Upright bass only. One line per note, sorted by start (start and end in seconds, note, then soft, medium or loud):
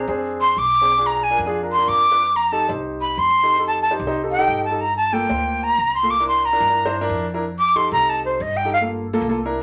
0.08 0.54 F2 medium
0.57 1.33 B1 loud
1.39 1.84 F2 loud
1.88 2.64 F2 medium
2.69 3.15 C2 medium
3.17 3.94 F2 medium
3.99 4.45 C2 loud
4.48 5.25 G1 medium
5.29 5.76 D2 loud
5.78 6.55 C2 medium
6.60 7.06 G2 medium
7.09 7.86 F2 medium
7.92 8.37 C2 loud
8.40 9.16 G1 medium
9.21 9.63 C2 loud